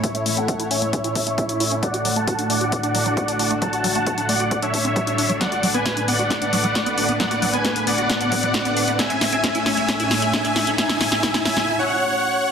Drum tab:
HH |xxoxxxoxxxoxxxox|xxoxxxoxxxoxxxox|xxoxxxoxxxoxxxox|xxoxxxoxxxoxxxox|
SD |----------------|----------------|----------------|o---o---o---o---|
BD |o---o---o-o-o---|o---o---o---o---|o---o---o-o-o---|o---o---o---o---|

HH |xxoxxxoxxxoxxxox|xxoxxxoxxxoxxxox|xxoxxxox--------|
SD |o---o---o---o---|o-o-o-o-o-o-o-o-|oooooooo--------|
BD |o---o---o-o-o---|o---o---o---o---|o---o-----------|